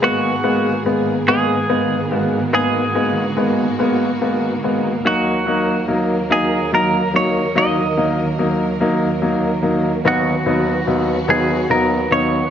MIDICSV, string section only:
0, 0, Header, 1, 2, 480
1, 0, Start_track
1, 0, Key_signature, 5, "minor"
1, 0, Tempo, 833333
1, 20, Time_signature, 6, 3, 24, 8
1, 7201, End_track
2, 0, Start_track
2, 0, Title_t, "String section"
2, 0, Program_c, 0, 48
2, 0, Note_on_c, 0, 68, 56
2, 9, Note_on_c, 0, 44, 53
2, 10, Note_on_c, 0, 51, 46
2, 10, Note_on_c, 0, 58, 46
2, 12, Note_on_c, 0, 59, 46
2, 1431, Note_off_c, 0, 68, 0
2, 1463, Note_on_c, 0, 66, 59
2, 2880, Note_off_c, 0, 44, 0
2, 2880, Note_off_c, 0, 51, 0
2, 2881, Note_off_c, 0, 59, 0
2, 2896, Note_off_c, 0, 66, 0
2, 2910, Note_on_c, 0, 70, 52
2, 2912, Note_on_c, 0, 39, 46
2, 2912, Note_on_c, 0, 51, 47
2, 2913, Note_on_c, 0, 54, 46
2, 5765, Note_off_c, 0, 58, 0
2, 5771, Note_off_c, 0, 70, 0
2, 5772, Note_off_c, 0, 54, 0
2, 5797, Note_on_c, 0, 59, 52
2, 5799, Note_on_c, 0, 54, 49
2, 5799, Note_on_c, 0, 66, 62
2, 7201, Note_off_c, 0, 39, 0
2, 7201, Note_off_c, 0, 51, 0
2, 7201, Note_off_c, 0, 54, 0
2, 7201, Note_off_c, 0, 59, 0
2, 7201, Note_off_c, 0, 66, 0
2, 7201, End_track
0, 0, End_of_file